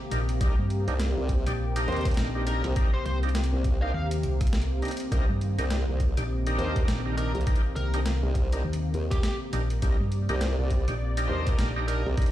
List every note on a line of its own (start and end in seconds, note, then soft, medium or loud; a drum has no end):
0.00 12.31 C3 medium
0.00 0.41 D#3 loud
0.00 12.31 A#3 medium
0.00 12.31 C4 medium
0.00 12.31 G4 medium
0.11 0.39 A#1 loud
0.11 0.21 D4 medium
0.11 0.21 D#4 medium
0.11 0.21 G4 medium
0.11 0.21 A#4 medium
0.11 closed hi-hat medium
0.29 closed hi-hat medium
0.41 0.56 C2 loud
0.41 0.56 D4 medium
0.41 0.56 D#4 medium
0.41 0.56 G4 medium
0.41 5.11 G4 loud
0.41 0.56 A#4 medium
0.41 kick loud
0.41 closed hi-hat medium
0.59 0.85 G2 loud
0.70 closed hi-hat soft
0.88 1.14 C2 loud
0.88 0.94 D4 medium
0.88 0.94 D#4 medium
0.88 0.94 G4 medium
0.88 0.94 A#4 loud
0.88 closed hi-hat medium
1.00 snare loud
1.00 closed hi-hat medium
1.17 1.44 C2 loud
1.29 kick medium
1.29 closed hi-hat soft
1.47 1.86 A#1 loud
1.47 1.53 D4 loud
1.47 1.53 D#4 medium
1.47 1.53 G4 medium
1.47 1.53 D5 loud
1.47 cross-stick soft
1.47 closed hi-hat medium
1.76 2.31 D4 medium
1.76 2.31 D#4 medium
1.76 2.31 G4 medium
1.76 2.31 A#4 medium
1.76 closed hi-hat medium
1.88 2.16 D#2 loud
1.88 2.06 C5 medium
1.88 closed hi-hat soft
1.92 closed hi-hat soft
1.97 closed hi-hat soft
2.01 closed hi-hat soft
2.05 kick loud
2.05 closed hi-hat medium
2.08 closed hi-hat soft
2.11 closed hi-hat soft
2.14 snare loud
2.14 closed hi-hat soft
2.17 2.62 A#1 loud
2.17 closed hi-hat medium
2.35 2.45 D4 loud
2.35 2.45 D#4 medium
2.35 2.45 G4 medium
2.35 2.45 A#4 loud
2.47 2.62 D4 loud
2.47 2.62 D#4 medium
2.47 2.62 G4 medium
2.47 2.65 A#4 medium
2.47 2.62 A#4 loud
2.47 closed hi-hat medium
2.64 2.74 C2 loud
2.64 closed hi-hat medium
2.76 2.91 D4 medium
2.76 2.91 D#4 medium
2.76 2.91 G4 medium
2.76 2.91 A#4 loud
2.76 kick loud
2.76 closed hi-hat medium
2.94 3.01 C5 medium
3.06 3.50 C2 loud
3.06 3.17 C5 medium
3.06 closed hi-hat soft
3.23 3.30 D4 medium
3.23 3.30 D#4 medium
3.23 3.30 G4 medium
3.23 3.30 A#4 medium
3.23 closed hi-hat soft
3.29 closed hi-hat soft
3.35 snare loud
3.35 closed hi-hat medium
3.44 closed hi-hat soft
3.53 3.92 C2 loud
3.64 kick medium
3.64 closed hi-hat soft
3.82 3.92 D4 medium
3.82 3.92 D#4 medium
3.82 3.92 G4 medium
3.82 3.92 A#4 medium
3.82 3.90 F5 medium
3.94 4.22 D#2 loud
3.94 4.05 F5 medium
4.11 closed hi-hat medium
4.23 4.80 C2 medium
4.23 closed hi-hat soft
4.41 kick loud
4.41 cross-stick soft
4.41 closed hi-hat soft
4.47 closed hi-hat soft
4.53 snare loud
4.53 closed hi-hat soft
4.62 closed hi-hat soft
4.82 4.92 D4 medium
4.82 4.92 D#4 medium
4.82 4.92 G4 medium
4.82 4.92 A#4 medium
4.82 closed hi-hat soft
4.85 closed hi-hat soft
4.88 closed hi-hat soft
4.91 closed hi-hat soft
4.97 closed hi-hat medium
5.00 closed hi-hat medium
5.12 5.26 C2 medium
5.12 9.82 D#3 loud
5.12 5.27 D4 medium
5.12 5.26 D#4 medium
5.12 5.27 G4 medium
5.12 5.27 A#4 medium
5.12 kick loud
5.12 closed hi-hat medium
5.29 5.56 G2 loud
5.41 closed hi-hat soft
5.59 5.85 C2 loud
5.59 5.65 D4 medium
5.59 5.65 D#4 medium
5.59 5.65 G4 medium
5.59 5.65 A#4 medium
5.59 closed hi-hat medium
5.70 snare loud
5.70 closed hi-hat medium
5.88 6.15 C2 loud
6.00 kick medium
6.00 closed hi-hat soft
6.17 6.57 A#1 loud
6.17 6.24 D4 loud
6.17 6.24 D#4 medium
6.17 6.24 G4 medium
6.17 6.24 D5 loud
6.17 cross-stick soft
6.17 closed hi-hat medium
6.47 7.01 D4 medium
6.47 7.02 D#4 medium
6.47 7.01 G4 medium
6.47 7.02 A#4 medium
6.47 closed hi-hat medium
6.59 6.86 D#2 medium
6.59 6.76 C5 medium
6.59 closed hi-hat soft
6.76 kick loud
6.76 closed hi-hat medium
6.88 7.32 A#1 loud
6.88 snare loud
6.88 closed hi-hat medium
7.06 7.16 D4 loud
7.06 7.16 D#4 medium
7.06 7.16 G4 medium
7.06 7.16 A#4 loud
7.18 7.32 D4 loud
7.18 7.32 D#4 medium
7.18 7.32 G4 medium
7.18 7.35 A#4 medium
7.18 7.32 A#4 loud
7.18 closed hi-hat medium
7.35 7.45 C2 loud
7.35 closed hi-hat soft
7.41 closed hi-hat soft
7.47 7.62 D4 medium
7.47 7.62 D#4 medium
7.47 7.62 G4 medium
7.47 7.62 A#4 loud
7.47 kick loud
7.47 closed hi-hat medium
7.55 closed hi-hat soft
7.76 8.20 C2 loud
7.76 7.94 A#4 medium
7.76 closed hi-hat soft
7.94 8.00 D4 medium
7.94 8.00 D#4 medium
7.94 8.00 G4 medium
7.94 8.00 A#4 medium
7.94 closed hi-hat medium
8.06 snare loud
8.06 closed hi-hat medium
8.23 8.63 C2 loud
8.35 kick medium
8.35 closed hi-hat soft
8.52 8.63 D4 medium
8.52 8.63 D#4 medium
8.52 8.63 G4 medium
8.52 8.63 A#4 loud
8.52 closed hi-hat medium
8.65 8.92 D#2 loud
8.73 closed hi-hat medium
8.94 9.21 D#2 loud
8.94 closed hi-hat soft
9.11 9.19 G4 medium
9.11 kick loud
9.11 cross-stick soft
9.11 closed hi-hat medium
9.23 9.34 G4 medium
9.23 snare loud
9.23 closed hi-hat medium
9.53 9.80 A#1 loud
9.53 9.62 D4 medium
9.53 9.62 D#4 medium
9.53 9.62 G4 medium
9.53 9.62 A#4 medium
9.53 closed hi-hat medium
9.70 closed hi-hat medium
9.82 9.97 C2 loud
9.82 9.97 D4 medium
9.82 9.97 D#4 medium
9.82 9.97 G4 medium
9.82 9.97 A#4 medium
9.82 12.31 D5 loud
9.82 kick loud
9.82 closed hi-hat medium
10.00 10.26 G2 loud
10.12 closed hi-hat soft
10.29 10.56 C2 loud
10.29 10.36 D4 medium
10.29 10.36 D#4 medium
10.29 10.36 G4 medium
10.29 10.36 A#4 loud
10.29 closed hi-hat medium
10.41 snare loud
10.41 closed hi-hat medium
10.58 10.85 C2 loud
10.70 kick medium
10.70 closed hi-hat soft
10.88 11.27 A#1 loud
10.88 10.94 D4 loud
10.88 10.94 D#4 medium
10.88 10.94 G4 medium
10.88 10.94 D5 loud
10.88 cross-stick soft
10.88 closed hi-hat medium
11.17 11.72 D4 medium
11.17 11.72 D#4 medium
11.17 11.72 G4 medium
11.17 11.72 A#4 medium
11.17 closed hi-hat medium
11.29 11.57 D#2 loud
11.29 11.47 C5 medium
11.47 kick loud
11.47 closed hi-hat medium
11.59 12.03 A#1 loud
11.59 snare loud
11.59 closed hi-hat medium
11.76 11.86 D4 loud
11.76 11.86 D#4 medium
11.76 11.86 G4 medium
11.76 11.86 A#4 loud
11.88 12.03 D4 loud
11.88 12.03 D#4 medium
11.88 12.03 G4 medium
11.88 12.06 A#4 medium
11.88 12.03 A#4 loud
11.88 closed hi-hat medium
12.06 12.16 C2 loud
12.17 12.31 D4 medium
12.17 12.31 D#4 medium
12.17 12.31 G4 medium
12.17 12.31 A#4 loud
12.17 kick loud
12.17 closed hi-hat medium
12.22 closed hi-hat soft
12.26 closed hi-hat soft